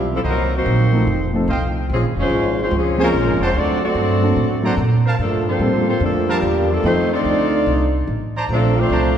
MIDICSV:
0, 0, Header, 1, 6, 480
1, 0, Start_track
1, 0, Key_signature, -1, "major"
1, 0, Tempo, 412088
1, 285, Time_signature, 4, 2, 24, 8
1, 10691, End_track
2, 0, Start_track
2, 0, Title_t, "Trumpet section"
2, 0, Program_c, 0, 61
2, 277, Note_on_c, 0, 72, 80
2, 278, Note_on_c, 0, 75, 77
2, 280, Note_on_c, 0, 82, 89
2, 282, Note_on_c, 0, 78, 71
2, 493, Note_off_c, 0, 72, 0
2, 494, Note_off_c, 0, 75, 0
2, 495, Note_off_c, 0, 82, 0
2, 496, Note_off_c, 0, 78, 0
2, 1733, Note_on_c, 0, 72, 81
2, 1734, Note_on_c, 0, 75, 75
2, 1736, Note_on_c, 0, 77, 74
2, 1736, Note_on_c, 0, 79, 93
2, 1943, Note_off_c, 0, 72, 0
2, 1944, Note_off_c, 0, 75, 0
2, 1945, Note_off_c, 0, 77, 0
2, 1945, Note_off_c, 0, 79, 0
2, 3489, Note_on_c, 0, 72, 83
2, 3489, Note_on_c, 0, 73, 73
2, 3493, Note_on_c, 0, 80, 79
2, 3493, Note_on_c, 0, 82, 87
2, 3597, Note_off_c, 0, 72, 0
2, 3597, Note_off_c, 0, 73, 0
2, 3600, Note_off_c, 0, 80, 0
2, 3600, Note_off_c, 0, 82, 0
2, 3966, Note_on_c, 0, 74, 71
2, 3968, Note_on_c, 0, 81, 90
2, 3971, Note_on_c, 0, 78, 77
2, 3972, Note_on_c, 0, 72, 84
2, 4076, Note_off_c, 0, 74, 0
2, 4077, Note_off_c, 0, 81, 0
2, 4078, Note_off_c, 0, 78, 0
2, 4079, Note_off_c, 0, 72, 0
2, 5403, Note_on_c, 0, 82, 94
2, 5404, Note_on_c, 0, 72, 92
2, 5406, Note_on_c, 0, 78, 81
2, 5408, Note_on_c, 0, 74, 82
2, 5513, Note_off_c, 0, 82, 0
2, 5514, Note_off_c, 0, 72, 0
2, 5515, Note_off_c, 0, 78, 0
2, 5517, Note_off_c, 0, 74, 0
2, 5890, Note_on_c, 0, 72, 75
2, 5891, Note_on_c, 0, 70, 91
2, 5891, Note_on_c, 0, 77, 82
2, 5892, Note_on_c, 0, 81, 95
2, 5998, Note_off_c, 0, 70, 0
2, 5998, Note_off_c, 0, 72, 0
2, 5998, Note_off_c, 0, 77, 0
2, 5999, Note_off_c, 0, 81, 0
2, 7323, Note_on_c, 0, 72, 84
2, 7324, Note_on_c, 0, 70, 94
2, 7324, Note_on_c, 0, 77, 90
2, 7324, Note_on_c, 0, 81, 98
2, 7433, Note_off_c, 0, 72, 0
2, 7434, Note_off_c, 0, 70, 0
2, 7434, Note_off_c, 0, 77, 0
2, 7434, Note_off_c, 0, 81, 0
2, 9731, Note_on_c, 0, 72, 91
2, 9734, Note_on_c, 0, 74, 76
2, 9734, Note_on_c, 0, 82, 98
2, 9735, Note_on_c, 0, 81, 85
2, 9838, Note_off_c, 0, 72, 0
2, 9840, Note_off_c, 0, 74, 0
2, 9840, Note_off_c, 0, 82, 0
2, 9841, Note_off_c, 0, 81, 0
2, 10372, Note_on_c, 0, 74, 75
2, 10375, Note_on_c, 0, 81, 77
2, 10377, Note_on_c, 0, 82, 88
2, 10379, Note_on_c, 0, 72, 86
2, 10583, Note_off_c, 0, 74, 0
2, 10585, Note_off_c, 0, 81, 0
2, 10586, Note_off_c, 0, 82, 0
2, 10587, Note_off_c, 0, 72, 0
2, 10691, End_track
3, 0, Start_track
3, 0, Title_t, "Saxophone section"
3, 0, Program_c, 1, 65
3, 175, Note_on_c, 1, 64, 75
3, 176, Note_on_c, 1, 69, 83
3, 182, Note_on_c, 1, 53, 72
3, 184, Note_on_c, 1, 60, 77
3, 237, Note_off_c, 1, 64, 0
3, 238, Note_off_c, 1, 69, 0
3, 242, Note_off_c, 1, 53, 0
3, 244, Note_off_c, 1, 60, 0
3, 328, Note_on_c, 1, 54, 77
3, 328, Note_on_c, 1, 60, 84
3, 329, Note_on_c, 1, 63, 81
3, 335, Note_on_c, 1, 70, 98
3, 602, Note_off_c, 1, 54, 0
3, 602, Note_off_c, 1, 60, 0
3, 603, Note_off_c, 1, 63, 0
3, 606, Note_off_c, 1, 70, 0
3, 650, Note_on_c, 1, 58, 77
3, 652, Note_on_c, 1, 72, 91
3, 653, Note_on_c, 1, 66, 85
3, 654, Note_on_c, 1, 63, 84
3, 1227, Note_off_c, 1, 58, 0
3, 1229, Note_off_c, 1, 66, 0
3, 1540, Note_off_c, 1, 72, 0
3, 1541, Note_off_c, 1, 63, 0
3, 2244, Note_on_c, 1, 68, 80
3, 2249, Note_on_c, 1, 61, 69
3, 2255, Note_on_c, 1, 60, 75
3, 2258, Note_on_c, 1, 53, 74
3, 2377, Note_off_c, 1, 68, 0
3, 2382, Note_off_c, 1, 61, 0
3, 2386, Note_off_c, 1, 60, 0
3, 2388, Note_off_c, 1, 53, 0
3, 2558, Note_on_c, 1, 61, 85
3, 2562, Note_on_c, 1, 56, 89
3, 2564, Note_on_c, 1, 72, 96
3, 2567, Note_on_c, 1, 65, 82
3, 2988, Note_off_c, 1, 61, 0
3, 2990, Note_off_c, 1, 56, 0
3, 2991, Note_off_c, 1, 72, 0
3, 2992, Note_off_c, 1, 65, 0
3, 3040, Note_on_c, 1, 61, 75
3, 3042, Note_on_c, 1, 72, 90
3, 3047, Note_on_c, 1, 65, 73
3, 3048, Note_on_c, 1, 56, 74
3, 3175, Note_off_c, 1, 61, 0
3, 3176, Note_off_c, 1, 72, 0
3, 3179, Note_off_c, 1, 56, 0
3, 3179, Note_off_c, 1, 65, 0
3, 3227, Note_on_c, 1, 53, 73
3, 3229, Note_on_c, 1, 61, 76
3, 3230, Note_on_c, 1, 60, 68
3, 3231, Note_on_c, 1, 68, 81
3, 3512, Note_off_c, 1, 53, 0
3, 3513, Note_off_c, 1, 61, 0
3, 3514, Note_off_c, 1, 60, 0
3, 3514, Note_off_c, 1, 68, 0
3, 3533, Note_on_c, 1, 70, 99
3, 3538, Note_on_c, 1, 65, 82
3, 3542, Note_on_c, 1, 61, 85
3, 3543, Note_on_c, 1, 56, 86
3, 3956, Note_off_c, 1, 70, 0
3, 3958, Note_off_c, 1, 65, 0
3, 3960, Note_off_c, 1, 61, 0
3, 3961, Note_off_c, 1, 56, 0
3, 4022, Note_on_c, 1, 61, 84
3, 4024, Note_on_c, 1, 56, 79
3, 4024, Note_on_c, 1, 72, 98
3, 4027, Note_on_c, 1, 65, 85
3, 4147, Note_off_c, 1, 61, 0
3, 4148, Note_off_c, 1, 56, 0
3, 4148, Note_off_c, 1, 72, 0
3, 4149, Note_off_c, 1, 65, 0
3, 4166, Note_on_c, 1, 60, 95
3, 4174, Note_on_c, 1, 74, 111
3, 4175, Note_on_c, 1, 69, 90
3, 4178, Note_on_c, 1, 66, 91
3, 4462, Note_off_c, 1, 60, 0
3, 4462, Note_off_c, 1, 66, 0
3, 4463, Note_off_c, 1, 69, 0
3, 4466, Note_off_c, 1, 74, 0
3, 4476, Note_on_c, 1, 66, 88
3, 4477, Note_on_c, 1, 69, 88
3, 4479, Note_on_c, 1, 60, 89
3, 4482, Note_on_c, 1, 74, 100
3, 5372, Note_off_c, 1, 66, 0
3, 5373, Note_off_c, 1, 69, 0
3, 5374, Note_off_c, 1, 60, 0
3, 5375, Note_off_c, 1, 74, 0
3, 6058, Note_on_c, 1, 69, 85
3, 6067, Note_on_c, 1, 58, 74
3, 6068, Note_on_c, 1, 53, 75
3, 6068, Note_on_c, 1, 62, 73
3, 6346, Note_off_c, 1, 69, 0
3, 6351, Note_off_c, 1, 53, 0
3, 6351, Note_off_c, 1, 58, 0
3, 6351, Note_off_c, 1, 62, 0
3, 6387, Note_on_c, 1, 58, 84
3, 6390, Note_on_c, 1, 72, 93
3, 6394, Note_on_c, 1, 65, 82
3, 6398, Note_on_c, 1, 69, 80
3, 6839, Note_off_c, 1, 58, 0
3, 6845, Note_off_c, 1, 72, 0
3, 6846, Note_off_c, 1, 69, 0
3, 6847, Note_off_c, 1, 65, 0
3, 6853, Note_on_c, 1, 58, 79
3, 6859, Note_on_c, 1, 72, 89
3, 6860, Note_on_c, 1, 69, 77
3, 6861, Note_on_c, 1, 65, 79
3, 7001, Note_off_c, 1, 58, 0
3, 7004, Note_off_c, 1, 69, 0
3, 7004, Note_off_c, 1, 72, 0
3, 7005, Note_off_c, 1, 65, 0
3, 7030, Note_on_c, 1, 62, 69
3, 7034, Note_on_c, 1, 53, 72
3, 7036, Note_on_c, 1, 58, 73
3, 7040, Note_on_c, 1, 69, 85
3, 7312, Note_off_c, 1, 62, 0
3, 7315, Note_off_c, 1, 53, 0
3, 7315, Note_off_c, 1, 58, 0
3, 7318, Note_off_c, 1, 69, 0
3, 7351, Note_on_c, 1, 58, 82
3, 7351, Note_on_c, 1, 62, 79
3, 7357, Note_on_c, 1, 67, 89
3, 7360, Note_on_c, 1, 53, 81
3, 7803, Note_off_c, 1, 53, 0
3, 7803, Note_off_c, 1, 62, 0
3, 7810, Note_off_c, 1, 58, 0
3, 7814, Note_on_c, 1, 69, 95
3, 7817, Note_on_c, 1, 53, 83
3, 7817, Note_on_c, 1, 62, 80
3, 7819, Note_off_c, 1, 67, 0
3, 7824, Note_on_c, 1, 58, 82
3, 7972, Note_off_c, 1, 69, 0
3, 7974, Note_off_c, 1, 53, 0
3, 7974, Note_off_c, 1, 62, 0
3, 7975, Note_on_c, 1, 72, 104
3, 7977, Note_off_c, 1, 58, 0
3, 7979, Note_on_c, 1, 63, 91
3, 7981, Note_on_c, 1, 57, 89
3, 7984, Note_on_c, 1, 65, 84
3, 8265, Note_off_c, 1, 72, 0
3, 8266, Note_off_c, 1, 63, 0
3, 8268, Note_off_c, 1, 57, 0
3, 8269, Note_off_c, 1, 65, 0
3, 8308, Note_on_c, 1, 65, 90
3, 8312, Note_on_c, 1, 60, 90
3, 8313, Note_on_c, 1, 74, 105
3, 8314, Note_on_c, 1, 69, 94
3, 9208, Note_off_c, 1, 65, 0
3, 9210, Note_off_c, 1, 60, 0
3, 9211, Note_off_c, 1, 69, 0
3, 9211, Note_off_c, 1, 74, 0
3, 9932, Note_on_c, 1, 60, 88
3, 9932, Note_on_c, 1, 69, 98
3, 9934, Note_on_c, 1, 53, 90
3, 9939, Note_on_c, 1, 62, 91
3, 10204, Note_off_c, 1, 60, 0
3, 10204, Note_off_c, 1, 69, 0
3, 10205, Note_off_c, 1, 53, 0
3, 10208, Note_off_c, 1, 62, 0
3, 10233, Note_on_c, 1, 62, 101
3, 10238, Note_on_c, 1, 57, 104
3, 10240, Note_on_c, 1, 72, 110
3, 10243, Note_on_c, 1, 65, 98
3, 10691, Note_off_c, 1, 57, 0
3, 10691, Note_off_c, 1, 62, 0
3, 10691, Note_off_c, 1, 65, 0
3, 10691, Note_off_c, 1, 72, 0
3, 10691, End_track
4, 0, Start_track
4, 0, Title_t, "Grand piano"
4, 0, Program_c, 2, 0
4, 1077, Note_on_c, 2, 53, 61
4, 1087, Note_on_c, 2, 57, 54
4, 1091, Note_on_c, 2, 60, 49
4, 1102, Note_on_c, 2, 63, 51
4, 1106, Note_on_c, 2, 69, 64
4, 1227, Note_off_c, 2, 53, 0
4, 1232, Note_off_c, 2, 57, 0
4, 1234, Note_off_c, 2, 60, 0
4, 1240, Note_off_c, 2, 63, 0
4, 1242, Note_off_c, 2, 69, 0
4, 1555, Note_on_c, 2, 53, 63
4, 1562, Note_on_c, 2, 57, 58
4, 1569, Note_on_c, 2, 63, 56
4, 1572, Note_on_c, 2, 60, 57
4, 1581, Note_on_c, 2, 69, 69
4, 1707, Note_off_c, 2, 53, 0
4, 1710, Note_off_c, 2, 57, 0
4, 1713, Note_off_c, 2, 63, 0
4, 1715, Note_off_c, 2, 60, 0
4, 1719, Note_off_c, 2, 69, 0
4, 3469, Note_on_c, 2, 53, 74
4, 3477, Note_on_c, 2, 58, 65
4, 3479, Note_on_c, 2, 60, 67
4, 3488, Note_on_c, 2, 61, 72
4, 3492, Note_on_c, 2, 68, 86
4, 3623, Note_off_c, 2, 53, 0
4, 3627, Note_off_c, 2, 58, 0
4, 3628, Note_off_c, 2, 60, 0
4, 3633, Note_off_c, 2, 61, 0
4, 3635, Note_off_c, 2, 68, 0
4, 4915, Note_on_c, 2, 54, 55
4, 4918, Note_on_c, 2, 58, 52
4, 4921, Note_on_c, 2, 60, 54
4, 4928, Note_on_c, 2, 62, 54
4, 4937, Note_on_c, 2, 69, 63
4, 5066, Note_off_c, 2, 54, 0
4, 5068, Note_off_c, 2, 58, 0
4, 5069, Note_off_c, 2, 60, 0
4, 5073, Note_off_c, 2, 62, 0
4, 5077, Note_off_c, 2, 69, 0
4, 5392, Note_on_c, 2, 54, 65
4, 5398, Note_on_c, 2, 58, 58
4, 5401, Note_on_c, 2, 60, 59
4, 5405, Note_on_c, 2, 62, 60
4, 5415, Note_on_c, 2, 69, 71
4, 5545, Note_off_c, 2, 54, 0
4, 5548, Note_off_c, 2, 58, 0
4, 5549, Note_off_c, 2, 60, 0
4, 5551, Note_off_c, 2, 62, 0
4, 5556, Note_off_c, 2, 69, 0
4, 6523, Note_on_c, 2, 55, 58
4, 6524, Note_on_c, 2, 58, 55
4, 6533, Note_on_c, 2, 60, 54
4, 6536, Note_on_c, 2, 65, 55
4, 6541, Note_on_c, 2, 69, 68
4, 6809, Note_off_c, 2, 55, 0
4, 6809, Note_off_c, 2, 58, 0
4, 6814, Note_off_c, 2, 60, 0
4, 6815, Note_off_c, 2, 65, 0
4, 6818, Note_off_c, 2, 69, 0
4, 7967, Note_on_c, 2, 53, 56
4, 7977, Note_on_c, 2, 57, 56
4, 7987, Note_on_c, 2, 63, 56
4, 7988, Note_on_c, 2, 60, 55
4, 7993, Note_on_c, 2, 69, 66
4, 8251, Note_off_c, 2, 53, 0
4, 8256, Note_off_c, 2, 57, 0
4, 8261, Note_off_c, 2, 60, 0
4, 8261, Note_off_c, 2, 63, 0
4, 8264, Note_off_c, 2, 69, 0
4, 10691, End_track
5, 0, Start_track
5, 0, Title_t, "Trombone section"
5, 0, Program_c, 3, 61
5, 141, Note_on_c, 3, 57, 69
5, 145, Note_on_c, 3, 52, 68
5, 149, Note_on_c, 3, 48, 70
5, 211, Note_off_c, 3, 57, 0
5, 214, Note_off_c, 3, 52, 0
5, 217, Note_off_c, 3, 48, 0
5, 321, Note_on_c, 3, 51, 83
5, 325, Note_on_c, 3, 58, 77
5, 326, Note_on_c, 3, 54, 78
5, 598, Note_off_c, 3, 51, 0
5, 600, Note_off_c, 3, 58, 0
5, 601, Note_off_c, 3, 54, 0
5, 630, Note_on_c, 3, 54, 78
5, 638, Note_on_c, 3, 51, 75
5, 640, Note_on_c, 3, 60, 84
5, 1216, Note_off_c, 3, 54, 0
5, 1533, Note_off_c, 3, 51, 0
5, 1534, Note_off_c, 3, 60, 0
5, 2227, Note_on_c, 3, 49, 70
5, 2227, Note_on_c, 3, 53, 72
5, 2234, Note_on_c, 3, 56, 69
5, 2364, Note_off_c, 3, 49, 0
5, 2365, Note_off_c, 3, 53, 0
5, 2370, Note_off_c, 3, 56, 0
5, 2540, Note_on_c, 3, 61, 79
5, 2543, Note_on_c, 3, 56, 78
5, 2550, Note_on_c, 3, 53, 77
5, 2978, Note_off_c, 3, 61, 0
5, 2980, Note_off_c, 3, 56, 0
5, 2983, Note_off_c, 3, 53, 0
5, 3029, Note_on_c, 3, 53, 78
5, 3029, Note_on_c, 3, 56, 76
5, 3030, Note_on_c, 3, 60, 75
5, 3169, Note_off_c, 3, 53, 0
5, 3169, Note_off_c, 3, 56, 0
5, 3170, Note_off_c, 3, 60, 0
5, 3186, Note_on_c, 3, 56, 74
5, 3187, Note_on_c, 3, 49, 79
5, 3191, Note_on_c, 3, 53, 77
5, 3487, Note_off_c, 3, 49, 0
5, 3488, Note_off_c, 3, 53, 0
5, 3492, Note_off_c, 3, 56, 0
5, 3501, Note_on_c, 3, 49, 75
5, 3502, Note_on_c, 3, 53, 81
5, 3502, Note_on_c, 3, 58, 79
5, 3938, Note_off_c, 3, 49, 0
5, 3939, Note_off_c, 3, 53, 0
5, 3939, Note_off_c, 3, 58, 0
5, 3980, Note_on_c, 3, 60, 79
5, 3984, Note_on_c, 3, 56, 82
5, 3986, Note_on_c, 3, 53, 81
5, 4124, Note_off_c, 3, 60, 0
5, 4127, Note_off_c, 3, 53, 0
5, 4127, Note_off_c, 3, 56, 0
5, 4149, Note_on_c, 3, 62, 93
5, 4153, Note_on_c, 3, 54, 91
5, 4155, Note_on_c, 3, 57, 92
5, 4444, Note_off_c, 3, 54, 0
5, 4449, Note_off_c, 3, 57, 0
5, 4453, Note_off_c, 3, 62, 0
5, 4458, Note_on_c, 3, 54, 85
5, 4463, Note_on_c, 3, 57, 85
5, 4467, Note_on_c, 3, 62, 82
5, 5363, Note_off_c, 3, 54, 0
5, 5365, Note_off_c, 3, 57, 0
5, 5368, Note_off_c, 3, 62, 0
5, 6044, Note_on_c, 3, 53, 70
5, 6048, Note_on_c, 3, 50, 76
5, 6049, Note_on_c, 3, 57, 72
5, 6332, Note_off_c, 3, 53, 0
5, 6341, Note_off_c, 3, 50, 0
5, 6341, Note_off_c, 3, 57, 0
5, 6346, Note_on_c, 3, 53, 79
5, 6354, Note_on_c, 3, 50, 77
5, 6355, Note_on_c, 3, 60, 74
5, 6805, Note_off_c, 3, 50, 0
5, 6808, Note_off_c, 3, 60, 0
5, 6815, Note_off_c, 3, 53, 0
5, 6819, Note_on_c, 3, 50, 77
5, 6822, Note_on_c, 3, 60, 79
5, 6829, Note_on_c, 3, 53, 78
5, 6975, Note_off_c, 3, 50, 0
5, 6982, Note_off_c, 3, 53, 0
5, 6984, Note_off_c, 3, 60, 0
5, 6989, Note_on_c, 3, 50, 78
5, 6993, Note_on_c, 3, 57, 75
5, 6996, Note_on_c, 3, 53, 78
5, 7291, Note_off_c, 3, 50, 0
5, 7293, Note_off_c, 3, 57, 0
5, 7294, Note_off_c, 3, 53, 0
5, 7318, Note_on_c, 3, 50, 77
5, 7321, Note_on_c, 3, 46, 75
5, 7324, Note_on_c, 3, 55, 77
5, 7800, Note_off_c, 3, 50, 0
5, 7801, Note_off_c, 3, 46, 0
5, 7803, Note_off_c, 3, 55, 0
5, 7807, Note_on_c, 3, 57, 73
5, 7809, Note_on_c, 3, 53, 72
5, 7812, Note_on_c, 3, 50, 75
5, 7948, Note_off_c, 3, 57, 0
5, 7960, Note_on_c, 3, 51, 83
5, 7962, Note_on_c, 3, 57, 85
5, 7962, Note_on_c, 3, 60, 86
5, 7970, Note_off_c, 3, 53, 0
5, 7971, Note_off_c, 3, 50, 0
5, 8256, Note_off_c, 3, 51, 0
5, 8257, Note_off_c, 3, 57, 0
5, 8258, Note_off_c, 3, 60, 0
5, 8278, Note_on_c, 3, 57, 87
5, 8282, Note_on_c, 3, 62, 86
5, 8289, Note_on_c, 3, 63, 88
5, 9194, Note_off_c, 3, 57, 0
5, 9195, Note_off_c, 3, 62, 0
5, 9199, Note_off_c, 3, 63, 0
5, 9890, Note_on_c, 3, 53, 85
5, 9891, Note_on_c, 3, 57, 86
5, 9904, Note_on_c, 3, 50, 88
5, 10182, Note_off_c, 3, 53, 0
5, 10182, Note_off_c, 3, 57, 0
5, 10189, Note_off_c, 3, 50, 0
5, 10203, Note_on_c, 3, 60, 91
5, 10207, Note_on_c, 3, 53, 93
5, 10213, Note_on_c, 3, 57, 97
5, 10647, Note_off_c, 3, 53, 0
5, 10649, Note_off_c, 3, 57, 0
5, 10649, Note_off_c, 3, 60, 0
5, 10691, End_track
6, 0, Start_track
6, 0, Title_t, "Upright bass"
6, 0, Program_c, 4, 32
6, 0, Note_on_c, 4, 35, 79
6, 268, Note_off_c, 4, 35, 0
6, 286, Note_on_c, 4, 36, 81
6, 752, Note_off_c, 4, 36, 0
6, 765, Note_on_c, 4, 34, 91
6, 1231, Note_off_c, 4, 34, 0
6, 1244, Note_on_c, 4, 29, 87
6, 1711, Note_off_c, 4, 29, 0
6, 1719, Note_on_c, 4, 36, 83
6, 2188, Note_off_c, 4, 36, 0
6, 2207, Note_on_c, 4, 34, 85
6, 2365, Note_off_c, 4, 34, 0
6, 2365, Note_on_c, 4, 32, 61
6, 2515, Note_off_c, 4, 32, 0
6, 2522, Note_on_c, 4, 29, 66
6, 2667, Note_off_c, 4, 29, 0
6, 2674, Note_on_c, 4, 32, 88
6, 3145, Note_off_c, 4, 32, 0
6, 3157, Note_on_c, 4, 37, 90
6, 3627, Note_off_c, 4, 37, 0
6, 3643, Note_on_c, 4, 34, 79
6, 3795, Note_off_c, 4, 34, 0
6, 3795, Note_on_c, 4, 32, 53
6, 3943, Note_off_c, 4, 32, 0
6, 3950, Note_on_c, 4, 29, 66
6, 4106, Note_off_c, 4, 29, 0
6, 4124, Note_on_c, 4, 38, 81
6, 4591, Note_off_c, 4, 38, 0
6, 4599, Note_on_c, 4, 43, 87
6, 5068, Note_off_c, 4, 43, 0
6, 5082, Note_on_c, 4, 45, 88
6, 5550, Note_off_c, 4, 45, 0
6, 5558, Note_on_c, 4, 46, 82
6, 6027, Note_off_c, 4, 46, 0
6, 6043, Note_on_c, 4, 43, 77
6, 6510, Note_off_c, 4, 43, 0
6, 6517, Note_on_c, 4, 45, 87
6, 6987, Note_off_c, 4, 45, 0
6, 6992, Note_on_c, 4, 41, 87
6, 7464, Note_off_c, 4, 41, 0
6, 7474, Note_on_c, 4, 40, 86
6, 7945, Note_off_c, 4, 40, 0
6, 7961, Note_on_c, 4, 41, 85
6, 8429, Note_off_c, 4, 41, 0
6, 8439, Note_on_c, 4, 38, 88
6, 8908, Note_off_c, 4, 38, 0
6, 8925, Note_on_c, 4, 36, 88
6, 9391, Note_off_c, 4, 36, 0
6, 9404, Note_on_c, 4, 33, 83
6, 9871, Note_off_c, 4, 33, 0
6, 9886, Note_on_c, 4, 34, 84
6, 10351, Note_off_c, 4, 34, 0
6, 10362, Note_on_c, 4, 36, 85
6, 10691, Note_off_c, 4, 36, 0
6, 10691, End_track
0, 0, End_of_file